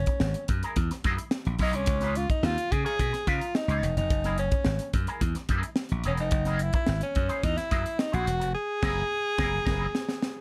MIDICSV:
0, 0, Header, 1, 6, 480
1, 0, Start_track
1, 0, Tempo, 556070
1, 1626, Time_signature, 4, 2, 24, 8
1, 8985, End_track
2, 0, Start_track
2, 0, Title_t, "Clean electric guitar"
2, 0, Program_c, 0, 27
2, 547, Note_on_c, 0, 70, 89
2, 551, Note_on_c, 0, 68, 78
2, 560, Note_on_c, 0, 64, 70
2, 653, Note_off_c, 0, 64, 0
2, 655, Note_off_c, 0, 68, 0
2, 664, Note_off_c, 0, 70, 0
2, 904, Note_on_c, 0, 64, 93
2, 912, Note_on_c, 0, 68, 90
2, 917, Note_on_c, 0, 70, 94
2, 1009, Note_off_c, 0, 70, 0
2, 1018, Note_off_c, 0, 68, 0
2, 1060, Note_off_c, 0, 64, 0
2, 1385, Note_on_c, 0, 64, 92
2, 1395, Note_on_c, 0, 68, 88
2, 1400, Note_on_c, 0, 70, 102
2, 1492, Note_off_c, 0, 70, 0
2, 1505, Note_off_c, 0, 68, 0
2, 1540, Note_off_c, 0, 64, 0
2, 1736, Note_on_c, 0, 71, 94
2, 1745, Note_on_c, 0, 65, 82
2, 1751, Note_on_c, 0, 63, 77
2, 1855, Note_off_c, 0, 63, 0
2, 1857, Note_off_c, 0, 65, 0
2, 1858, Note_off_c, 0, 71, 0
2, 2450, Note_on_c, 0, 73, 78
2, 2458, Note_on_c, 0, 65, 80
2, 2467, Note_on_c, 0, 63, 70
2, 2563, Note_off_c, 0, 63, 0
2, 2576, Note_off_c, 0, 65, 0
2, 2583, Note_off_c, 0, 73, 0
2, 2819, Note_on_c, 0, 63, 74
2, 2826, Note_on_c, 0, 65, 84
2, 2829, Note_on_c, 0, 71, 97
2, 2925, Note_off_c, 0, 71, 0
2, 2936, Note_off_c, 0, 65, 0
2, 2976, Note_off_c, 0, 63, 0
2, 3193, Note_on_c, 0, 73, 87
2, 3194, Note_on_c, 0, 65, 81
2, 3199, Note_on_c, 0, 63, 71
2, 3299, Note_off_c, 0, 63, 0
2, 3304, Note_off_c, 0, 65, 0
2, 3316, Note_off_c, 0, 73, 0
2, 3664, Note_on_c, 0, 70, 92
2, 3666, Note_on_c, 0, 68, 78
2, 3678, Note_on_c, 0, 64, 85
2, 3787, Note_off_c, 0, 64, 0
2, 3795, Note_off_c, 0, 68, 0
2, 3795, Note_off_c, 0, 70, 0
2, 4382, Note_on_c, 0, 70, 95
2, 4390, Note_on_c, 0, 68, 86
2, 4397, Note_on_c, 0, 64, 83
2, 4499, Note_off_c, 0, 64, 0
2, 4500, Note_off_c, 0, 68, 0
2, 4503, Note_off_c, 0, 70, 0
2, 4741, Note_on_c, 0, 64, 80
2, 4752, Note_on_c, 0, 68, 91
2, 4758, Note_on_c, 0, 70, 81
2, 4860, Note_off_c, 0, 70, 0
2, 4870, Note_off_c, 0, 68, 0
2, 4915, Note_off_c, 0, 64, 0
2, 5222, Note_on_c, 0, 64, 88
2, 5226, Note_on_c, 0, 68, 96
2, 5234, Note_on_c, 0, 70, 87
2, 5328, Note_off_c, 0, 70, 0
2, 5342, Note_off_c, 0, 68, 0
2, 5377, Note_off_c, 0, 64, 0
2, 5578, Note_on_c, 0, 70, 90
2, 5582, Note_on_c, 0, 68, 80
2, 5590, Note_on_c, 0, 64, 67
2, 5689, Note_off_c, 0, 64, 0
2, 5693, Note_off_c, 0, 68, 0
2, 5703, Note_off_c, 0, 70, 0
2, 6290, Note_on_c, 0, 72, 92
2, 6297, Note_on_c, 0, 68, 85
2, 6306, Note_on_c, 0, 64, 76
2, 6402, Note_off_c, 0, 64, 0
2, 6406, Note_off_c, 0, 68, 0
2, 6417, Note_off_c, 0, 72, 0
2, 6652, Note_on_c, 0, 64, 85
2, 6660, Note_on_c, 0, 68, 84
2, 6669, Note_on_c, 0, 70, 93
2, 6757, Note_off_c, 0, 70, 0
2, 6771, Note_off_c, 0, 68, 0
2, 6812, Note_off_c, 0, 64, 0
2, 7007, Note_on_c, 0, 72, 88
2, 7018, Note_on_c, 0, 64, 79
2, 7019, Note_on_c, 0, 68, 77
2, 7123, Note_off_c, 0, 64, 0
2, 7124, Note_off_c, 0, 68, 0
2, 7139, Note_off_c, 0, 72, 0
2, 7617, Note_on_c, 0, 70, 105
2, 7625, Note_on_c, 0, 68, 101
2, 7633, Note_on_c, 0, 64, 105
2, 7783, Note_off_c, 0, 70, 0
2, 7788, Note_off_c, 0, 68, 0
2, 7792, Note_off_c, 0, 64, 0
2, 8096, Note_on_c, 0, 70, 109
2, 8100, Note_on_c, 0, 68, 93
2, 8110, Note_on_c, 0, 64, 93
2, 8263, Note_off_c, 0, 70, 0
2, 8265, Note_off_c, 0, 68, 0
2, 8270, Note_off_c, 0, 64, 0
2, 8333, Note_on_c, 0, 70, 108
2, 8339, Note_on_c, 0, 68, 103
2, 8348, Note_on_c, 0, 64, 114
2, 8501, Note_off_c, 0, 70, 0
2, 8504, Note_off_c, 0, 68, 0
2, 8509, Note_off_c, 0, 64, 0
2, 8985, End_track
3, 0, Start_track
3, 0, Title_t, "Tenor saxophone"
3, 0, Program_c, 1, 66
3, 0, Note_on_c, 1, 61, 79
3, 400, Note_off_c, 1, 61, 0
3, 1399, Note_on_c, 1, 63, 92
3, 1515, Note_on_c, 1, 61, 102
3, 1528, Note_off_c, 1, 63, 0
3, 1873, Note_on_c, 1, 65, 97
3, 1886, Note_off_c, 1, 61, 0
3, 1982, Note_off_c, 1, 65, 0
3, 1987, Note_on_c, 1, 63, 96
3, 2113, Note_on_c, 1, 65, 108
3, 2126, Note_off_c, 1, 63, 0
3, 2345, Note_on_c, 1, 68, 97
3, 2357, Note_off_c, 1, 65, 0
3, 2460, Note_off_c, 1, 68, 0
3, 2465, Note_on_c, 1, 68, 113
3, 2830, Note_on_c, 1, 65, 96
3, 2843, Note_off_c, 1, 68, 0
3, 3067, Note_on_c, 1, 63, 104
3, 3080, Note_off_c, 1, 65, 0
3, 3425, Note_off_c, 1, 63, 0
3, 3429, Note_on_c, 1, 63, 94
3, 3762, Note_off_c, 1, 63, 0
3, 3789, Note_on_c, 1, 61, 86
3, 4233, Note_off_c, 1, 61, 0
3, 5242, Note_on_c, 1, 61, 81
3, 5292, Note_off_c, 1, 61, 0
3, 5356, Note_on_c, 1, 63, 93
3, 5726, Note_on_c, 1, 64, 81
3, 5739, Note_off_c, 1, 63, 0
3, 5821, Note_off_c, 1, 64, 0
3, 5826, Note_on_c, 1, 64, 83
3, 6048, Note_off_c, 1, 64, 0
3, 6066, Note_on_c, 1, 61, 93
3, 6422, Note_on_c, 1, 63, 113
3, 6435, Note_off_c, 1, 61, 0
3, 6539, Note_on_c, 1, 64, 98
3, 6552, Note_off_c, 1, 63, 0
3, 6900, Note_on_c, 1, 63, 104
3, 6913, Note_off_c, 1, 64, 0
3, 7027, Note_on_c, 1, 66, 110
3, 7040, Note_off_c, 1, 63, 0
3, 7368, Note_off_c, 1, 66, 0
3, 7373, Note_on_c, 1, 68, 123
3, 8985, Note_off_c, 1, 68, 0
3, 8985, End_track
4, 0, Start_track
4, 0, Title_t, "Slap bass"
4, 0, Program_c, 2, 36
4, 178, Note_on_c, 2, 32, 103
4, 290, Note_off_c, 2, 32, 0
4, 422, Note_on_c, 2, 42, 97
4, 532, Note_off_c, 2, 42, 0
4, 660, Note_on_c, 2, 40, 85
4, 770, Note_off_c, 2, 40, 0
4, 900, Note_on_c, 2, 42, 110
4, 1010, Note_off_c, 2, 42, 0
4, 1264, Note_on_c, 2, 34, 82
4, 1372, Note_off_c, 2, 34, 0
4, 1376, Note_on_c, 2, 35, 99
4, 1497, Note_off_c, 2, 35, 0
4, 1497, Note_on_c, 2, 36, 84
4, 1616, Note_off_c, 2, 36, 0
4, 1616, Note_on_c, 2, 37, 106
4, 1942, Note_off_c, 2, 37, 0
4, 2097, Note_on_c, 2, 39, 100
4, 2208, Note_off_c, 2, 39, 0
4, 2346, Note_on_c, 2, 49, 94
4, 2453, Note_off_c, 2, 49, 0
4, 2587, Note_on_c, 2, 47, 83
4, 2693, Note_off_c, 2, 47, 0
4, 2825, Note_on_c, 2, 49, 108
4, 2932, Note_off_c, 2, 49, 0
4, 3177, Note_on_c, 2, 37, 92
4, 3287, Note_off_c, 2, 37, 0
4, 3303, Note_on_c, 2, 28, 91
4, 3411, Note_off_c, 2, 28, 0
4, 3422, Note_on_c, 2, 29, 87
4, 3545, Note_off_c, 2, 29, 0
4, 3545, Note_on_c, 2, 30, 110
4, 3866, Note_off_c, 2, 30, 0
4, 4022, Note_on_c, 2, 32, 104
4, 4130, Note_off_c, 2, 32, 0
4, 4262, Note_on_c, 2, 42, 100
4, 4370, Note_off_c, 2, 42, 0
4, 4500, Note_on_c, 2, 40, 85
4, 4609, Note_off_c, 2, 40, 0
4, 4739, Note_on_c, 2, 42, 101
4, 4848, Note_off_c, 2, 42, 0
4, 5106, Note_on_c, 2, 34, 86
4, 5212, Note_off_c, 2, 34, 0
4, 5225, Note_on_c, 2, 28, 92
4, 5349, Note_off_c, 2, 28, 0
4, 5349, Note_on_c, 2, 29, 86
4, 5454, Note_off_c, 2, 29, 0
4, 5454, Note_on_c, 2, 30, 109
4, 5780, Note_off_c, 2, 30, 0
4, 5942, Note_on_c, 2, 32, 98
4, 6049, Note_off_c, 2, 32, 0
4, 6178, Note_on_c, 2, 42, 103
4, 6287, Note_off_c, 2, 42, 0
4, 6419, Note_on_c, 2, 40, 89
4, 6528, Note_off_c, 2, 40, 0
4, 6656, Note_on_c, 2, 42, 106
4, 6766, Note_off_c, 2, 42, 0
4, 7023, Note_on_c, 2, 34, 76
4, 7130, Note_off_c, 2, 34, 0
4, 7140, Note_on_c, 2, 28, 99
4, 7262, Note_off_c, 2, 28, 0
4, 7262, Note_on_c, 2, 29, 80
4, 7369, Note_off_c, 2, 29, 0
4, 7615, Note_on_c, 2, 30, 113
4, 7782, Note_off_c, 2, 30, 0
4, 8098, Note_on_c, 2, 30, 109
4, 8264, Note_off_c, 2, 30, 0
4, 8343, Note_on_c, 2, 30, 94
4, 8507, Note_off_c, 2, 30, 0
4, 8985, End_track
5, 0, Start_track
5, 0, Title_t, "Muted clean electric guitar strokes"
5, 65, Note_on_c, 9, 29, 46
5, 152, Note_off_c, 9, 29, 0
5, 193, Note_on_c, 9, 29, 48
5, 280, Note_off_c, 9, 29, 0
5, 304, Note_on_c, 9, 29, 39
5, 390, Note_off_c, 9, 29, 0
5, 789, Note_on_c, 9, 29, 50
5, 875, Note_off_c, 9, 29, 0
5, 1020, Note_on_c, 9, 29, 42
5, 1106, Note_off_c, 9, 29, 0
5, 1263, Note_on_c, 9, 29, 39
5, 1349, Note_off_c, 9, 29, 0
5, 1502, Note_on_c, 9, 29, 44
5, 1589, Note_off_c, 9, 29, 0
5, 1626, Note_on_c, 9, 29, 42
5, 1713, Note_off_c, 9, 29, 0
5, 1865, Note_on_c, 9, 29, 41
5, 1952, Note_off_c, 9, 29, 0
5, 1983, Note_on_c, 9, 29, 40
5, 2069, Note_off_c, 9, 29, 0
5, 2095, Note_on_c, 9, 29, 40
5, 2182, Note_off_c, 9, 29, 0
5, 2216, Note_on_c, 9, 29, 45
5, 2303, Note_off_c, 9, 29, 0
5, 2700, Note_on_c, 9, 29, 44
5, 2786, Note_off_c, 9, 29, 0
5, 2935, Note_on_c, 9, 29, 40
5, 3022, Note_off_c, 9, 29, 0
5, 3065, Note_on_c, 9, 29, 36
5, 3151, Note_off_c, 9, 29, 0
5, 3309, Note_on_c, 9, 29, 43
5, 3396, Note_off_c, 9, 29, 0
5, 3438, Note_on_c, 9, 29, 52
5, 3524, Note_off_c, 9, 29, 0
5, 3556, Note_on_c, 9, 29, 44
5, 3643, Note_off_c, 9, 29, 0
5, 3798, Note_on_c, 9, 29, 50
5, 3884, Note_off_c, 9, 29, 0
5, 3916, Note_on_c, 9, 29, 57
5, 4002, Note_off_c, 9, 29, 0
5, 4029, Note_on_c, 9, 29, 53
5, 4115, Note_off_c, 9, 29, 0
5, 4153, Note_on_c, 9, 29, 55
5, 4239, Note_off_c, 9, 29, 0
5, 4509, Note_on_c, 9, 29, 53
5, 4596, Note_off_c, 9, 29, 0
5, 4628, Note_on_c, 9, 29, 44
5, 4714, Note_off_c, 9, 29, 0
5, 4870, Note_on_c, 9, 29, 45
5, 4956, Note_off_c, 9, 29, 0
5, 5107, Note_on_c, 9, 29, 50
5, 5193, Note_off_c, 9, 29, 0
5, 5338, Note_on_c, 9, 29, 50
5, 5424, Note_off_c, 9, 29, 0
5, 5462, Note_on_c, 9, 29, 47
5, 5549, Note_off_c, 9, 29, 0
5, 5700, Note_on_c, 9, 29, 47
5, 5786, Note_off_c, 9, 29, 0
5, 5818, Note_on_c, 9, 29, 57
5, 5904, Note_off_c, 9, 29, 0
5, 5930, Note_on_c, 9, 29, 51
5, 6016, Note_off_c, 9, 29, 0
5, 6055, Note_on_c, 9, 29, 54
5, 6141, Note_off_c, 9, 29, 0
5, 6413, Note_on_c, 9, 29, 39
5, 6499, Note_off_c, 9, 29, 0
5, 6538, Note_on_c, 9, 29, 42
5, 6625, Note_off_c, 9, 29, 0
5, 6767, Note_on_c, 9, 29, 39
5, 6854, Note_off_c, 9, 29, 0
5, 6888, Note_on_c, 9, 29, 41
5, 6974, Note_off_c, 9, 29, 0
5, 7133, Note_on_c, 9, 29, 43
5, 7220, Note_off_c, 9, 29, 0
5, 7250, Note_on_c, 9, 29, 54
5, 7336, Note_off_c, 9, 29, 0
5, 8985, End_track
6, 0, Start_track
6, 0, Title_t, "Drums"
6, 54, Note_on_c, 9, 42, 48
6, 62, Note_on_c, 9, 36, 94
6, 140, Note_off_c, 9, 42, 0
6, 148, Note_off_c, 9, 36, 0
6, 173, Note_on_c, 9, 38, 103
6, 259, Note_off_c, 9, 38, 0
6, 295, Note_on_c, 9, 42, 50
6, 382, Note_off_c, 9, 42, 0
6, 416, Note_on_c, 9, 42, 83
6, 422, Note_on_c, 9, 36, 85
6, 502, Note_off_c, 9, 42, 0
6, 508, Note_off_c, 9, 36, 0
6, 542, Note_on_c, 9, 42, 45
6, 628, Note_off_c, 9, 42, 0
6, 656, Note_on_c, 9, 42, 84
6, 661, Note_on_c, 9, 36, 93
6, 742, Note_off_c, 9, 42, 0
6, 747, Note_off_c, 9, 36, 0
6, 785, Note_on_c, 9, 38, 41
6, 785, Note_on_c, 9, 42, 53
6, 871, Note_off_c, 9, 38, 0
6, 871, Note_off_c, 9, 42, 0
6, 900, Note_on_c, 9, 42, 82
6, 902, Note_on_c, 9, 36, 91
6, 986, Note_off_c, 9, 42, 0
6, 988, Note_off_c, 9, 36, 0
6, 1022, Note_on_c, 9, 42, 59
6, 1109, Note_off_c, 9, 42, 0
6, 1131, Note_on_c, 9, 38, 123
6, 1218, Note_off_c, 9, 38, 0
6, 1253, Note_on_c, 9, 42, 43
6, 1339, Note_off_c, 9, 42, 0
6, 1369, Note_on_c, 9, 46, 85
6, 1376, Note_on_c, 9, 36, 84
6, 1455, Note_off_c, 9, 46, 0
6, 1462, Note_off_c, 9, 36, 0
6, 1495, Note_on_c, 9, 42, 55
6, 1581, Note_off_c, 9, 42, 0
6, 1607, Note_on_c, 9, 42, 99
6, 1618, Note_on_c, 9, 36, 122
6, 1693, Note_off_c, 9, 42, 0
6, 1704, Note_off_c, 9, 36, 0
6, 1733, Note_on_c, 9, 38, 37
6, 1733, Note_on_c, 9, 42, 48
6, 1819, Note_off_c, 9, 38, 0
6, 1819, Note_off_c, 9, 42, 0
6, 1860, Note_on_c, 9, 42, 64
6, 1946, Note_off_c, 9, 42, 0
6, 1982, Note_on_c, 9, 42, 45
6, 1983, Note_on_c, 9, 36, 97
6, 2068, Note_off_c, 9, 42, 0
6, 2069, Note_off_c, 9, 36, 0
6, 2101, Note_on_c, 9, 38, 110
6, 2187, Note_off_c, 9, 38, 0
6, 2226, Note_on_c, 9, 42, 54
6, 2312, Note_off_c, 9, 42, 0
6, 2347, Note_on_c, 9, 36, 95
6, 2351, Note_on_c, 9, 42, 80
6, 2434, Note_off_c, 9, 36, 0
6, 2437, Note_off_c, 9, 42, 0
6, 2469, Note_on_c, 9, 42, 47
6, 2556, Note_off_c, 9, 42, 0
6, 2585, Note_on_c, 9, 36, 94
6, 2589, Note_on_c, 9, 42, 98
6, 2671, Note_off_c, 9, 36, 0
6, 2675, Note_off_c, 9, 42, 0
6, 2709, Note_on_c, 9, 38, 38
6, 2709, Note_on_c, 9, 42, 50
6, 2795, Note_off_c, 9, 38, 0
6, 2795, Note_off_c, 9, 42, 0
6, 2825, Note_on_c, 9, 36, 85
6, 2827, Note_on_c, 9, 42, 80
6, 2911, Note_off_c, 9, 36, 0
6, 2913, Note_off_c, 9, 42, 0
6, 2947, Note_on_c, 9, 42, 58
6, 3033, Note_off_c, 9, 42, 0
6, 3063, Note_on_c, 9, 38, 127
6, 3150, Note_off_c, 9, 38, 0
6, 3186, Note_on_c, 9, 42, 44
6, 3273, Note_off_c, 9, 42, 0
6, 3308, Note_on_c, 9, 42, 77
6, 3394, Note_off_c, 9, 42, 0
6, 3428, Note_on_c, 9, 42, 51
6, 3514, Note_off_c, 9, 42, 0
6, 3543, Note_on_c, 9, 36, 113
6, 3543, Note_on_c, 9, 42, 85
6, 3629, Note_off_c, 9, 36, 0
6, 3629, Note_off_c, 9, 42, 0
6, 3662, Note_on_c, 9, 38, 36
6, 3662, Note_on_c, 9, 42, 45
6, 3748, Note_off_c, 9, 38, 0
6, 3748, Note_off_c, 9, 42, 0
6, 3778, Note_on_c, 9, 42, 60
6, 3865, Note_off_c, 9, 42, 0
6, 3897, Note_on_c, 9, 42, 51
6, 3901, Note_on_c, 9, 36, 106
6, 3983, Note_off_c, 9, 42, 0
6, 3987, Note_off_c, 9, 36, 0
6, 4010, Note_on_c, 9, 38, 109
6, 4096, Note_off_c, 9, 38, 0
6, 4134, Note_on_c, 9, 42, 62
6, 4221, Note_off_c, 9, 42, 0
6, 4260, Note_on_c, 9, 42, 84
6, 4262, Note_on_c, 9, 36, 91
6, 4346, Note_off_c, 9, 42, 0
6, 4348, Note_off_c, 9, 36, 0
6, 4378, Note_on_c, 9, 42, 48
6, 4465, Note_off_c, 9, 42, 0
6, 4499, Note_on_c, 9, 42, 97
6, 4500, Note_on_c, 9, 36, 98
6, 4586, Note_off_c, 9, 36, 0
6, 4586, Note_off_c, 9, 42, 0
6, 4618, Note_on_c, 9, 42, 54
6, 4619, Note_on_c, 9, 38, 38
6, 4705, Note_off_c, 9, 38, 0
6, 4705, Note_off_c, 9, 42, 0
6, 4737, Note_on_c, 9, 42, 83
6, 4739, Note_on_c, 9, 36, 83
6, 4823, Note_off_c, 9, 42, 0
6, 4826, Note_off_c, 9, 36, 0
6, 4860, Note_on_c, 9, 42, 59
6, 4946, Note_off_c, 9, 42, 0
6, 4969, Note_on_c, 9, 38, 126
6, 5055, Note_off_c, 9, 38, 0
6, 5084, Note_on_c, 9, 42, 44
6, 5171, Note_off_c, 9, 42, 0
6, 5210, Note_on_c, 9, 42, 82
6, 5297, Note_off_c, 9, 42, 0
6, 5330, Note_on_c, 9, 42, 52
6, 5416, Note_off_c, 9, 42, 0
6, 5446, Note_on_c, 9, 42, 88
6, 5455, Note_on_c, 9, 36, 118
6, 5532, Note_off_c, 9, 42, 0
6, 5542, Note_off_c, 9, 36, 0
6, 5570, Note_on_c, 9, 38, 41
6, 5570, Note_on_c, 9, 42, 48
6, 5656, Note_off_c, 9, 42, 0
6, 5657, Note_off_c, 9, 38, 0
6, 5691, Note_on_c, 9, 42, 63
6, 5777, Note_off_c, 9, 42, 0
6, 5806, Note_on_c, 9, 42, 47
6, 5815, Note_on_c, 9, 36, 101
6, 5893, Note_off_c, 9, 42, 0
6, 5901, Note_off_c, 9, 36, 0
6, 5926, Note_on_c, 9, 38, 115
6, 6012, Note_off_c, 9, 38, 0
6, 6050, Note_on_c, 9, 42, 53
6, 6136, Note_off_c, 9, 42, 0
6, 6173, Note_on_c, 9, 42, 72
6, 6179, Note_on_c, 9, 36, 91
6, 6259, Note_off_c, 9, 42, 0
6, 6266, Note_off_c, 9, 36, 0
6, 6295, Note_on_c, 9, 42, 45
6, 6382, Note_off_c, 9, 42, 0
6, 6417, Note_on_c, 9, 42, 95
6, 6418, Note_on_c, 9, 36, 95
6, 6504, Note_off_c, 9, 36, 0
6, 6504, Note_off_c, 9, 42, 0
6, 6540, Note_on_c, 9, 38, 40
6, 6540, Note_on_c, 9, 42, 59
6, 6626, Note_off_c, 9, 42, 0
6, 6627, Note_off_c, 9, 38, 0
6, 6658, Note_on_c, 9, 36, 89
6, 6661, Note_on_c, 9, 42, 80
6, 6744, Note_off_c, 9, 36, 0
6, 6747, Note_off_c, 9, 42, 0
6, 6783, Note_on_c, 9, 42, 56
6, 6869, Note_off_c, 9, 42, 0
6, 6897, Note_on_c, 9, 38, 124
6, 6984, Note_off_c, 9, 38, 0
6, 7021, Note_on_c, 9, 42, 44
6, 7108, Note_off_c, 9, 42, 0
6, 7142, Note_on_c, 9, 42, 87
6, 7228, Note_off_c, 9, 42, 0
6, 7264, Note_on_c, 9, 42, 56
6, 7350, Note_off_c, 9, 42, 0
6, 7619, Note_on_c, 9, 36, 105
6, 7620, Note_on_c, 9, 38, 104
6, 7620, Note_on_c, 9, 49, 88
6, 7705, Note_off_c, 9, 36, 0
6, 7706, Note_off_c, 9, 38, 0
6, 7706, Note_off_c, 9, 49, 0
6, 8101, Note_on_c, 9, 36, 104
6, 8104, Note_on_c, 9, 38, 102
6, 8187, Note_off_c, 9, 36, 0
6, 8191, Note_off_c, 9, 38, 0
6, 8343, Note_on_c, 9, 36, 109
6, 8347, Note_on_c, 9, 38, 102
6, 8347, Note_on_c, 9, 49, 75
6, 8430, Note_off_c, 9, 36, 0
6, 8434, Note_off_c, 9, 38, 0
6, 8434, Note_off_c, 9, 49, 0
6, 8587, Note_on_c, 9, 38, 96
6, 8673, Note_off_c, 9, 38, 0
6, 8706, Note_on_c, 9, 38, 88
6, 8792, Note_off_c, 9, 38, 0
6, 8826, Note_on_c, 9, 38, 109
6, 8912, Note_off_c, 9, 38, 0
6, 8985, End_track
0, 0, End_of_file